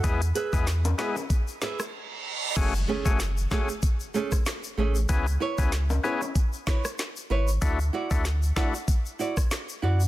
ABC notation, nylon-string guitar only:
X:1
M:4/4
L:1/16
Q:"Swing 16ths" 1/4=95
K:F#m
V:1 name="Nylon-string guitar"
z2 [GBe] z3 [GBe] z3 [GBe] z4 z | z2 [A,CG] z3 [A,CG] z3 [A,CG] z3 [A,CG] z | z2 [EBc] z3 [EBc] z3 [EBc] z3 [EBc] z | z2 [EFd] z3 [EFd] z3 [EFd] z3 [EFd] z |]